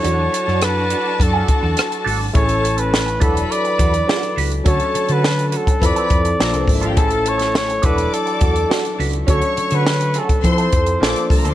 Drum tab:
HH |x-x-x-x-x-x-xxo-|xxxx-xxxxxxx-xox|xxxx-xxxxxxx-xox|xxxx-xxxxxxx-xox|
SD |---rr-------r---|----o-------o---|----o-------o---|---oo-------o---|
BD |--------o-o-----|o-----o---o-----|o------oo-o---o-|o-----o---o-----|

HH |xxxx-xxxxxxx-xox|
SD |----o-------o---|
BD |o------oo-o---o-|